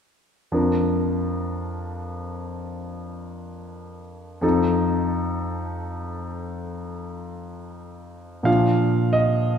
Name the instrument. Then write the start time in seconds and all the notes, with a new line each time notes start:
grand piano
0.52 F2 F3 D4 A#4
4.41 F2 F3 D#4 A4
8.43 A#2 F3 D4 F4 F5
9.13 D#5